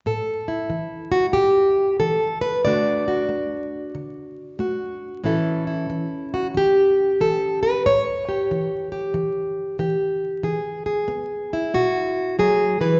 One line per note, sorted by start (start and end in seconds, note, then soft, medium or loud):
0.06 0.66 A2 medium
0.06 1.11 A4 soft
0.48 2.62 E4 soft
0.70 1.30 E3 medium
1.12 1.26 F#4 medium
1.33 1.96 A2 medium
1.33 1.99 G4 medium
2.00 2.60 E3 medium
2.00 2.41 A4 medium
2.41 2.64 B4 medium
2.65 3.26 D3 medium
2.65 3.28 A3 soft
2.65 5.22 D4 soft
2.65 3.07 F#4 soft
2.65 5.24 D5 loud
3.08 4.59 F#4 soft
3.29 3.89 A3 medium
3.95 4.55 D3 medium
4.59 5.19 A3 medium
4.59 5.22 F#4 soft
5.23 5.84 A2 medium
5.23 5.89 E3 soft
5.23 7.81 C#4 soft
5.23 5.67 E4 soft
5.23 6.33 A4 soft
5.67 6.57 E4 soft
5.90 6.50 E3 medium
6.34 6.47 F#4 medium
6.54 7.14 E3 medium
6.54 7.85 G4 medium
7.20 7.80 E3 medium
7.20 7.62 A4 medium
7.63 7.85 B4 medium
7.86 8.45 A2 medium
7.86 10.44 C#5 loud
8.29 8.91 G4 soft
8.51 9.10 E3 medium
8.92 9.79 G4 soft
9.14 9.74 E3 medium
9.79 10.39 E3 medium
9.79 10.42 G4 soft
10.43 11.04 E3 medium
10.43 10.85 G#4 soft
10.86 11.74 G#4 soft
11.08 11.69 B3 medium
11.53 12.40 E4 medium
11.74 12.35 B2 medium
11.74 12.39 F#4 medium
12.39 12.80 F#3 medium
12.39 12.81 G#4 medium
12.81 13.00 E3 medium
12.81 13.00 B4 medium